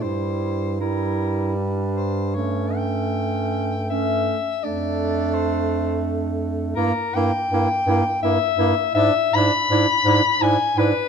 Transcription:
0.02 bass clarinet G2, tenor saxophone G3, clarinet E4, soprano saxophone C5
0.80 tenor saxophone G3, clarinet E4, soprano saxophone A#4
1.56 clarinet D4
1.94 soprano saxophone C5
2.34 tenor saxophone A3, clarinet C#4, soprano saxophone C#5
2.76 soprano saxophone G5
3.90 tenor saxophone A3, clarinet C#4, soprano saxophone E5
4.63 bass clarinet F2, tenor saxophone A3, clarinet D4, soprano saxophone D5
5.34 soprano saxophone C5
6.76 bass clarinet G2, tenor saxophone A#3, clarinet E4, soprano saxophone A#4
7.15 bass clarinet G2, tenor saxophone A#3, clarinet E4, soprano saxophone G5
7.51 bass clarinet G2, tenor saxophone A#3, clarinet E4
7.87 bass clarinet G2, tenor saxophone A#3, clarinet E4
8.22 bass clarinet G2, tenor saxophone A#3, clarinet E4, soprano saxophone E5
8.58 bass clarinet G2, tenor saxophone A#3, clarinet E4
8.95 bass clarinet G#2, tenor saxophone D4, clarinet E4, soprano saxophone E5
9.34 bass clarinet G#2, tenor saxophone D4, clarinet E4, soprano saxophone B5
9.70 bass clarinet G#2, tenor saxophone D4, clarinet E4
10.05 bass clarinet G#2, tenor saxophone D4, clarinet E4
10.41 bass clarinet G#2, tenor saxophone D4, clarinet E4, soprano saxophone G#5
10.76 bass clarinet G#2, tenor saxophone D4, clarinet E4, soprano saxophone B4

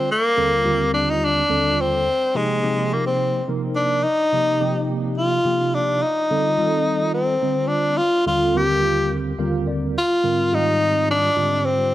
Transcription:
0.11 tenor saxophone A#3
0.37 tine electric piano D#2 D3 G3 C4 F4 A4
0.65 tine electric piano D#2 D3 G3 C4 F4 G4
0.94 tenor saxophone D4
1.10 tenor saxophone D#4
1.25 tenor saxophone D4
1.49 tine electric piano D#2 D3 G3 C4 F4 A4
1.81 tenor saxophone C4
2.34 tine electric piano C3 F3 A#3 D#4 G4, tenor saxophone G#3
2.63 tine electric piano C3 F3 A#3 D#4 G4
2.93 tenor saxophone A#3
3.06 tenor saxophone C4
3.48 tine electric piano C3 F3 A#3 D#4 A#4
3.75 tenor saxophone D4
4.03 tenor saxophone D#4
4.33 tine electric piano C3 F3 A#3 D#4 G4
4.60 tine electric piano C3 F3 A#3 D#4 G4
5.17 tenor saxophone F4
5.45 tine electric piano C3 F3 A#3 D#4 G4
5.74 tenor saxophone D4
6.02 tenor saxophone D#4
6.30 tine electric piano D3 G3 C4 F4 A4
6.58 tine electric piano D#3 G3 C4 F4 A4
7.14 tenor saxophone C4
7.42 tine electric piano D3 G3 C4 F4 C5
7.68 tenor saxophone D4
7.97 tenor saxophone F4
8.26 tine electric piano D#2 D3 G3 C4 F4 A4, tenor saxophone F4
8.54 tine electric piano D#2 D3 G3 C4 F4 A#4, tenor saxophone G4
9.38 tine electric piano D#2 D3 G3 C4 F4 A#4 F5
9.67 tine electric piano D5
9.98 tenor saxophone F4
10.23 tine electric piano G#2 D3 G3 C4 F4 A#4
10.52 tine electric piano G#2 D#3 G3 C4 F4 G4, tenor saxophone D#4
11.11 tenor saxophone D4
11.36 tine electric piano G#2 D3 G3 C4 F4 G4
11.65 tenor saxophone C4

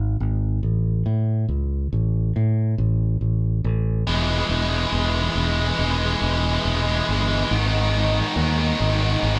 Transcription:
Already playing: fingered electric bass G#1
0.20 fingered electric bass G#1
0.63 fingered electric bass A1
1.06 fingered electric bass A2
1.49 fingered electric bass C#2
1.93 fingered electric bass A1
2.36 fingered electric bass A2
2.78 fingered electric bass A1
3.21 fingered electric bass A1
3.64 fingered electric bass A1
4.07 fingered electric bass E1, distorted electric guitar E3 G#3
4.13 distorted electric guitar E3 G#3
4.22 distorted electric guitar E3 G#3
4.30 distorted electric guitar E3 G#3
4.38 distorted electric guitar E3 G#3
4.45 distorted electric guitar E3 G#3
4.49 fingered electric bass E1, distorted electric guitar E3
4.54 distorted electric guitar G#3
4.61 distorted electric guitar E3 G#3
4.68 distorted electric guitar E3 G#3
4.75 distorted electric guitar E3 G#3
4.84 distorted electric guitar E3 G#3
4.91 fingered electric bass E1, distorted electric guitar E3 G#3
4.99 distorted electric guitar E3 G#3
5.06 distorted electric guitar E3 G#3
5.14 distorted electric guitar E3 G#3
5.22 distorted electric guitar E3 G#3
5.29 distorted electric guitar E3 G#3
5.35 fingered electric bass E1, distorted electric guitar E3 G#3
5.44 distorted electric guitar E3 G#3
5.52 distorted electric guitar E3 G#3
5.60 distorted electric guitar E3 G#3
5.67 distorted electric guitar E3 G#3
5.74 distorted electric guitar E3 G#3
5.79 fingered electric bass E1, distorted electric guitar E3
5.83 distorted electric guitar G#3
5.89 distorted electric guitar E3 G#3
5.98 distorted electric guitar E3 G#3
6.05 distorted electric guitar E3 G#3
6.13 distorted electric guitar E3 G#3
6.21 fingered electric bass E1, distorted electric guitar E3 G#3
6.28 distorted electric guitar E3 G#3
6.36 distorted electric guitar E3 G#3
6.43 distorted electric guitar E3 G#3
6.51 distorted electric guitar E3 G#3
6.58 distorted electric guitar E3 G#3
6.65 fingered electric bass E1, distorted electric guitar E3 G#3
6.74 distorted electric guitar E3 G#3
6.82 distorted electric guitar E3 G#3
6.89 distorted electric guitar E3 G#3
6.96 distorted electric guitar E3 G#3
7.04 distorted electric guitar E3 G#3
7.09 fingered electric bass G1, distorted electric guitar E3 G#3
7.20 distorted electric guitar E3 G#3
7.28 distorted electric guitar E3 G#3
7.35 distorted electric guitar E3 G#3
7.42 distorted electric guitar E3 G#3
7.51 fingered electric bass G#1, distorted electric guitar G#2 D#3
7.59 distorted electric guitar G#2 D#3
7.66 distorted electric guitar G#2 D#3
7.74 distorted electric guitar G#2 D#3
7.80 distorted electric guitar G#2 D#3
7.89 distorted electric guitar G#2 D#3
7.97 distorted electric guitar G#2 D#3
8.03 distorted electric guitar G#2 D#3
8.12 distorted electric guitar G#2 D#3
8.19 distorted electric guitar G#2 D#3
8.26 distorted electric guitar G#2 D#3
8.35 fingered electric bass D#2, distorted electric guitar G#2 D#3
8.42 distorted electric guitar G#2 D#3
8.49 distorted electric guitar G#2 D#3
8.58 distorted electric guitar G#2 D#3
8.66 distorted electric guitar G#2 D#3
8.72 distorted electric guitar G#2 D#3
8.80 fingered electric bass G#1, distorted electric guitar G#2 D#3
8.87 distorted electric guitar G#2 D#3
8.95 distorted electric guitar G#2 D#3
9.03 distorted electric guitar G#2 D#3
9.11 distorted electric guitar G#2 D#3
9.18 distorted electric guitar G#2 D#3
9.23 fingered electric bass G#1, distorted electric guitar G#2 D#3
9.33 distorted electric guitar G#2 D#3

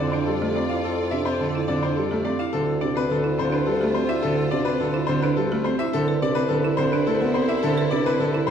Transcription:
Already playing: bassoon F2, string section F4 D5, grand piano D5
0.00 grand piano D3, marimba C4
0.12 marimba D4, grand piano C5
0.27 grand piano G3 A4
0.41 grand piano A3, marimba G4
0.55 marimba C4, grand piano D5
0.69 marimba E4, grand piano F5
0.84 grand piano A4
1.11 grand piano C3 E5, marimba D4
1.25 marimba C4, grand piano C5
1.40 grand piano D3 A4
1.55 marimba E4
1.68 grand piano D3 D5, marimba C4
1.82 marimba D4, grand piano C5
1.96 grand piano G3 A4
2.11 grand piano A3, marimba G4
2.25 marimba C4, grand piano D5
2.39 marimba E4, grand piano F5
2.53 bassoon D2, grand piano D3 A4, string section F4 C5
2.81 grand piano C3 D5, marimba D4
2.96 marimba C4, grand piano B4
3.11 grand piano D3 A4
3.24 marimba E4
3.38 grand piano D3 C5, marimba C4
3.52 marimba D4, grand piano B4
3.66 grand piano G3 A4
3.81 grand piano A3, marimba G4
3.94 marimba C4, grand piano C5
4.09 marimba E4, grand piano E5
4.22 grand piano D3 A4
4.51 grand piano C3 D5, marimba D4
4.65 marimba C4, grand piano B4
4.80 grand piano D3 A4
4.94 marimba E4
5.07 grand piano D3 C5, marimba C4
5.22 marimba D4, grand piano B4
5.37 grand piano G3 A4
5.51 grand piano A3, marimba G4
5.64 marimba C4, grand piano C5
5.79 marimba E4, grand piano E5
5.93 bassoon C2, grand piano D3 A4, string section E4 C5
6.08 marimba B4
6.22 grand piano C3 D5, marimba D4
6.35 marimba C4, grand piano B4
6.49 grand piano D3 A4
6.64 marimba E4
6.77 grand piano D3 C5, marimba C4
6.92 marimba D4, grand piano B4
7.06 grand piano A3 A4
7.21 grand piano B3, marimba A4
7.34 marimba C4, grand piano C5
7.48 marimba E4, grand piano E5
7.63 grand piano D3 A4
7.78 marimba B4
7.91 grand piano C3 D5, marimba D4
8.06 marimba C4, grand piano B4
8.19 grand piano D3 A4
8.34 marimba E4
8.47 grand piano C5

